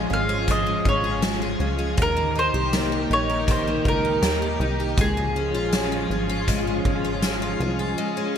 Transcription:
Already playing: twelve-string acoustic guitar F3 G#3 G#4, string machine F3 G#3 C#4 F4
0.10 analog synth bass G#1, twelve-string acoustic guitar C#4, mandolin F5
0.29 twelve-string acoustic guitar G#4
0.48 twelve-string acoustic guitar F3, mandolin D#5, kick, closed hi-hat
0.66 twelve-string acoustic guitar G#3
0.85 analog synth bass G#1, twelve-string acoustic guitar C#4, mandolin C#5, kick
1.04 twelve-string acoustic guitar G#4
1.22 twelve-string acoustic guitar G#3, snare, closed hi-hat
1.42 twelve-string acoustic guitar G#4
1.60 analog synth bass C#2, twelve-string acoustic guitar C#4
1.79 twelve-string acoustic guitar G#4
1.97 analog synth bass D#2, twelve-string acoustic guitar D#3, string machine D#3 D#4 G4 A#4, kick, closed hi-hat
2.02 mandolin A#4
2.17 twelve-string acoustic guitar A#3
2.35 twelve-string acoustic guitar D#4, mandolin C5
2.54 analog synth bass C2, twelve-string acoustic guitar G4
2.73 twelve-string acoustic guitar A#3, vibraphone A#3, snare, closed hi-hat, tambourine
2.92 twelve-string acoustic guitar G4
3.10 analog synth bass A#1, twelve-string acoustic guitar D#4, mandolin C#5
3.30 twelve-string acoustic guitar G4
3.48 twelve-string acoustic guitar D#3, mandolin C5, kick, closed hi-hat
3.67 twelve-string acoustic guitar A#3
3.85 analog synth bass C#2, twelve-string acoustic guitar D#4, mandolin A#4, kick
4.05 twelve-string acoustic guitar G4
4.22 analog synth bass D#2, twelve-string acoustic guitar A#3, snare, closed hi-hat, tambourine
4.42 twelve-string acoustic guitar G4
4.60 analog synth bass C2, twelve-string acoustic guitar D#4
4.80 twelve-string acoustic guitar G4
4.97 analog synth bass C#2, string machine F3 C#4 F4 G#4, twelve-string acoustic guitar G#3, mandolin G#4, kick, closed hi-hat
5.17 twelve-string acoustic guitar G#3
5.36 twelve-string acoustic guitar C#4
5.53 analog synth bass A#1, twelve-string acoustic guitar F4
5.72 twelve-string acoustic guitar G#3, snare, closed hi-hat, tambourine
5.92 twelve-string acoustic guitar F4
6.10 analog synth bass G#1, twelve-string acoustic guitar C#4
6.29 twelve-string acoustic guitar F4
6.48 twelve-string acoustic guitar G#3, kick, closed hi-hat
6.67 twelve-string acoustic guitar G#3
6.85 analog synth bass G#1, twelve-string acoustic guitar C#4, kick
7.05 twelve-string acoustic guitar F4
7.22 twelve-string acoustic guitar G#3, snare, closed hi-hat, tambourine
7.42 twelve-string acoustic guitar F4
7.60 analog synth bass C2, twelve-string acoustic guitar C#4
7.79 twelve-string acoustic guitar F4
7.98 string machine C#3 C#4 F4 G#4, vibraphone G#3, twelve-string acoustic guitar G#3
8.17 twelve-string acoustic guitar C#4

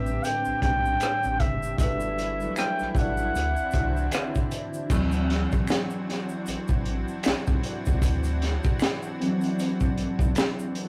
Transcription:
Already playing: analog synth bass A1, tine electric piano A2 G3 C4 D4 B4, analog synth pad D3 C4 G4, flugelhorn E5
0.06 shaker
0.24 flugelhorn G5, closed hi-hat, shaker
0.45 analog synth bass B1, shaker
0.62 analog synth bass B1, tine electric piano A2 G3 C4 D4 G4, flugelhorn G5, kick, closed hi-hat
0.85 shaker
1.00 finger snap, cross-stick, closed hi-hat, shaker
1.23 analog synth bass A1, shaker
1.40 analog synth bass F#1, flugelhorn E5, kick, closed hi-hat
1.63 shaker
1.78 analog synth bass G1, analog synth pad E3 A3 E4, tine electric piano G3 D4 E4 F#4 A4 B4, flugelhorn E5, kick, closed hi-hat, shaker
2.00 shaker
2.18 cross-stick, closed hi-hat, shaker
2.40 tine electric piano F#3 G3 D4 E4 A4 B4, shaker
2.56 flugelhorn G5, finger snap, cross-stick, closed hi-hat, shaker
2.79 analog synth bass A1, cross-stick, shaker
2.92 analog synth bass A1, flugelhorn G5, kick, shaker
2.96 tine electric piano G3 D4 E4 F#4 A4 D5, flugelhorn F#5, closed hi-hat
3.17 shaker
3.35 analog synth bass D2, analog synth pad C4 D4, closed hi-hat, shaker
3.56 analog synth bass C2, shaker
3.71 analog synth bass C2, tine electric piano D3 D4 E4, kick, closed hi-hat, shaker
3.75 tine electric piano F#4 C5
3.97 shaker
4.11 finger snap, cross-stick, closed hi-hat, shaker
4.35 kick, shaker
4.51 closed hi-hat, shaker
4.73 shaker
4.90 analog synth bass D2, analog synth pad E3 C4 D4 F#4, tine electric piano E3 F#3 C4, kick, crash, shaker
5.12 closed hi-hat, shaker
5.30 snare, closed hi-hat
5.52 kick, shaker
5.67 finger snap, snare, closed hi-hat, shaker
5.90 shaker
6.09 snare, closed hi-hat
6.29 shaker
6.46 analog synth bass A1, closed hi-hat, shaker
6.68 analog synth bass A1, kick, shaker
6.85 closed hi-hat
7.08 shaker
7.23 analog synth bass B1, finger snap, snare, closed hi-hat, shaker
7.47 analog synth bass B1, kick, shaker
7.63 closed hi-hat
7.85 analog synth bass C#2, kick, shaker
8.02 analog synth bass D2, kick, closed hi-hat, shaker
8.23 closed hi-hat, shaker
8.42 snare, closed hi-hat
8.64 kick, shaker
8.80 finger snap, snare, closed hi-hat, shaker
9.02 shaker
9.20 tine electric piano E3 F#3 C4, closed hi-hat
9.41 closed hi-hat, shaker
9.59 closed hi-hat, shaker
9.80 kick, shaker
9.97 analog synth bass B1, closed hi-hat
10.19 analog synth bass B1, kick, shaker
10.35 finger snap, snare, closed hi-hat, shaker
10.59 shaker
10.75 closed hi-hat

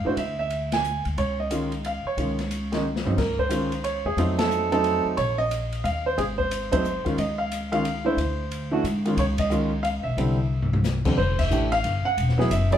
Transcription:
0.05 upright bass A2, grand piano E3 A3 D4 F#4 C5
0.17 upright bass D2, grand piano E5, ride
0.39 grand piano E5
0.50 ride
0.72 grand piano G#5, snare, ride
0.84 hi-hat pedal
1.05 upright bass D2, ride
1.17 upright bass C#2, grand piano C#5, ride
1.40 grand piano D#5
1.51 grand piano D#3 G#3 C#4 F4, hi-hat pedal, ride
1.72 ride
1.84 grand piano F5, ride
2.05 grand piano C#5, muted upright bass stroke
2.17 upright bass C#2, grand piano D#3 G#3 C#4 F4, ride
2.39 snare, ride
2.51 hi-hat pedal, ride
2.72 grand piano D#3 G#3 C#4 D#4, snare, ride
2.96 snare
3.05 grand piano C#3 F#3 C4 D#4, floor tom
3.18 upright bass C#2, grand piano A#4, kick, snare, crash
3.39 grand piano C5, kick
3.49 grand piano D#3 G#3 C#4 F4, hi-hat pedal, ride
3.72 ride
3.84 grand piano C#5, ride
4.05 upright bass D#2, grand piano G#4
4.17 upright bass F2, grand piano F#3 A3 C4 D#4 F4, ride
4.39 grand piano A4, snare, ride
4.51 hi-hat pedal
4.72 grand piano F#3 A3 C4 D#4 A4, ride
4.84 ride
5.05 muted upright bass stroke
5.17 upright bass A#1, grand piano C#5, ride
5.38 grand piano D#5
5.51 hi-hat pedal, ride
5.72 ride
5.84 upright bass D#2, grand piano F5, ride
6.06 grand piano C5
6.18 upright bass G#1, grand piano G#4, ride
6.38 grand piano C5, kick
6.51 hi-hat pedal, ride
6.71 grand piano F#3 A3 C4 D#4 C5, kick, ride
6.85 hi-hat pedal
7.05 grand piano D#3 G#3 C#4 F4, muted upright bass stroke, kick, ride
7.18 upright bass C#2, grand piano D#5, ride
7.38 grand piano F5
7.52 hi-hat pedal, ride
7.72 grand piano D#3 G#3 C#4 F4 F5, ride
7.85 ride
8.05 grand piano E3 A3 D4 E4 C5
8.17 upright bass D2, ride
8.51 ride
8.71 grand piano E3 A3 D4 F#4
8.84 upright bass G#2, hi-hat pedal, ride
9.05 grand piano D#3 G#3 C#4 F4, ride
9.17 upright bass C#2, grand piano C#5, ride
9.38 grand piano D#5, kick, ride
9.50 grand piano D#3 G#3 C#4 F4, hi-hat pedal
9.83 grand piano F5, ride
10.03 upright bass B1, grand piano E5
10.17 upright bass C2, grand piano D3 G3 C4 E4, ride
10.62 floor tom
10.73 floor tom
10.84 snare, hi-hat pedal
11.05 grand piano F2 D3 G3 C4 D4, kick, crash
11.18 upright bass F1, grand piano C5
11.39 grand piano E5, kick, crash
11.51 upright bass A1, grand piano E3 A3 D4 G4, hi-hat pedal
11.72 grand piano F5, ride
11.84 upright bass G1, ride
12.05 grand piano F#5, muted upright bass stroke
12.17 upright bass E1, ride
12.29 snare
12.38 grand piano F#3 B3 E4 G#4, snare
12.50 upright bass F#1, grand piano E5, hi-hat pedal, ride
12.71 grand piano F#3 B3 E4 G#4 D5, ride

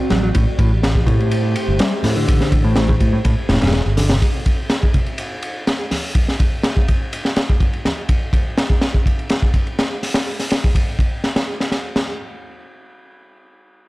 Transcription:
Already playing: analog synth pad C4 F#4 D5
0.10 fingered electric bass A1, picked electric bass F#3, snare, ride, high conga
0.23 picked electric bass F#3
0.34 fingered electric bass A1, picked electric bass A2, analog synth pad A3 G4 C5, kick, ride
0.59 fingered electric bass A1, picked electric bass A2, kick, ride
0.83 snare, ride
0.95 kick
1.07 picked electric bass A2, fingered electric bass A2, kick, ride, low conga
1.20 ride
1.31 ride
1.56 ride
1.68 fingered electric bass G1
1.79 picked electric bass G3, snare, ride
2.03 picked electric bass A2, fingered electric bass A2, snare, open hi-hat, high conga
2.16 picked electric bass D3
2.28 fingered electric bass A1, kick, ride
2.41 snare
2.52 fingered electric bass A1, kick, ride
2.64 picked electric bass A2
2.76 picked electric bass A2, snare, ride
2.89 picked electric bass A2, kick
3.00 fingered electric bass A2, kick, ride
3.13 picked electric bass A2
3.25 picked electric bass A2, kick, ride
3.49 fingered electric bass E1, picked electric bass A2, snare, ride
3.54 snare, ride
3.61 fingered electric bass E1, picked electric bass G2, snare, ride
3.68 snare, ride
3.72 snare, ride
3.86 fingered electric bass G1
3.97 picked electric bass D3, snare, open hi-hat, high conga
4.10 picked electric bass C3, snare, ride
4.22 kick, ride
4.46 kick, ride
4.70 snare, ride
4.83 kick
4.94 kick, ride, low conga
5.06 ride
5.18 ride
5.42 ride
5.67 snare, ride
5.91 snare, open hi-hat, high conga
6.15 kick, ride
6.28 snare
6.40 kick, ride
6.63 snare, ride
6.77 kick
6.88 kick, ride
7.13 ride
7.25 snare
7.36 snare, ride
7.50 kick
7.60 kick, ride
7.73 ride
7.85 snare, ride, high conga
8.09 kick, ride
8.33 kick, ride
8.58 snare, ride
8.70 kick
8.81 snare, ride
8.94 kick
9.06 kick, ride
9.19 ride
9.29 snare, ride
9.42 kick
9.54 kick, ride
9.67 ride
9.79 snare, ride
10.03 snare, open hi-hat
10.14 snare, ride
10.39 snare, open hi-hat
10.50 snare, ride
10.64 kick
10.75 kick, ride
10.99 kick, ride
11.24 snare, ride
11.36 snare, ride
11.60 snare, ride
11.72 snare, ride
11.96 snare, splash

